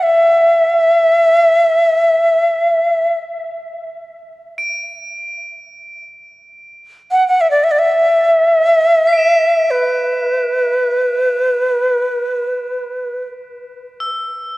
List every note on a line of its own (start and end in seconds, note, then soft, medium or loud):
0.00 3.14 E5 medium
0.00 5.19 E7 medium
4.58 9.12 D7 medium
7.11 7.27 F#5 medium
7.28 7.42 F#5 medium
7.41 7.50 E5 medium
7.51 7.65 D5 medium
7.64 7.73 E5 medium
7.71 7.80 D5 medium
7.78 9.72 E5 medium
9.07 14.47 B6 medium
9.13 14.50 D7 soft
9.18 14.52 E7 soft
9.70 13.25 B4 medium
14.00 14.58 E6 soft